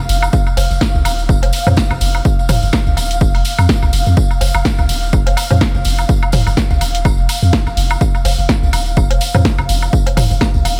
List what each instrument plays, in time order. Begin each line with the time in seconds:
Already playing: analog synth pad F5
0.09 sub bass F1, open hi-hat, tambourine
0.23 tambourine, high woodblock
0.33 kick, tambourine, cowbell
0.47 tambourine, high woodblock
0.57 sub bass F1, open hi-hat, tambourine, low woodblock
0.70 sub bass F1, tambourine
0.81 kick, snare, tambourine, high woodblock
0.95 sub bass C2, tambourine
1.05 sub bass D#1, open hi-hat, tambourine, high woodblock
1.19 tambourine
1.29 kick, tambourine, high woodblock
1.43 sub bass F1, closed hi-hat, tambourine, low woodblock
1.53 open hi-hat, tambourine
1.67 sub bass F2, mid tom, tambourine, cowbell, high woodblock, low woodblock
1.77 kick, snare, tambourine
1.91 sub bass F1, tambourine, high woodblock
2.01 sub bass F1, open hi-hat, tambourine
2.14 tambourine, high woodblock
2.25 kick, tambourine
2.39 tambourine
2.49 sub bass F1, mid tom, open hi-hat, tambourine, high woodblock, low woodblock
2.62 sub bass F1, tambourine
2.73 kick, snare, tambourine, high woodblock
2.87 sub bass C2, tambourine
2.97 sub bass D#1, open hi-hat, tambourine, cowbell, high woodblock
3.11 closed hi-hat, tambourine
3.21 kick, tambourine
3.35 sub bass F1, open hi-hat, tambourine, high woodblock
3.45 open hi-hat, tambourine
3.59 sub bass F2, tambourine, high woodblock
3.69 kick, snare, tambourine
3.83 sub bass C2, tambourine, high woodblock
3.93 sub bass F1, open hi-hat, tambourine
4.06 sub bass F2, tambourine
4.17 kick, tambourine
4.31 tambourine, high woodblock
4.41 sub bass F1, open hi-hat, tambourine, low woodblock
4.54 sub bass F1, tambourine, high woodblock
4.65 kick, snare, tambourine
4.79 sub bass C2, tambourine, high woodblock
4.89 sub bass D#1, open hi-hat, tambourine
5.03 tambourine
5.13 kick, tambourine, high woodblock
5.26 sub bass F1, closed hi-hat, tambourine, low woodblock
5.37 open hi-hat, tambourine, cowbell, high woodblock
5.50 sub bass F2, mid tom, tambourine, low woodblock
5.61 kick, snare, tambourine, high woodblock
5.74 sub bass F1, tambourine
5.85 sub bass F1, open hi-hat, tambourine
5.98 tambourine, high woodblock
6.09 kick, tambourine
6.23 tambourine, high woodblock
6.32 sub bass F1, mid tom, open hi-hat, tambourine, low woodblock
6.47 sub bass F1, tambourine, high woodblock
6.57 kick, snare, tambourine
6.70 sub bass C2, tambourine, cowbell
6.81 sub bass D#1, open hi-hat, tambourine, high woodblock
6.95 closed hi-hat, tambourine
7.05 kick, tambourine, high woodblock
7.18 sub bass F1, tambourine
7.29 open hi-hat, tambourine, high woodblock
7.42 sub bass F2, tambourine
7.53 kick, snare, tambourine
7.66 sub bass F1, tambourine, high woodblock
7.77 sub bass F1, open hi-hat, tambourine
7.90 tambourine, high woodblock
8.01 kick, tambourine, cowbell
8.15 tambourine, high woodblock
8.25 sub bass F1, open hi-hat, tambourine, low woodblock
8.38 sub bass F1, tambourine
8.49 kick, snare, tambourine, high woodblock
8.62 sub bass C2, tambourine
8.73 sub bass D#1, open hi-hat, tambourine, high woodblock
8.86 tambourine
8.97 kick, tambourine, high woodblock
9.10 sub bass F1, closed hi-hat, tambourine, low woodblock
9.21 open hi-hat, tambourine
9.34 sub bass F2, mid tom, tambourine, cowbell, high woodblock, low woodblock
9.45 kick, snare, tambourine
9.58 sub bass F1, tambourine, high woodblock
9.69 sub bass F1, open hi-hat, tambourine
9.82 tambourine, high woodblock
9.93 kick, tambourine
10.06 closed hi-hat, tambourine, low woodblock
10.17 sub bass F1, mid tom, open hi-hat, tambourine, high woodblock, low woodblock
10.31 sub bass F1, tambourine
10.41 kick, snare, tambourine, high woodblock
10.54 sub bass C2, tambourine
10.65 sub bass D#1, open hi-hat, tambourine, cowbell, high woodblock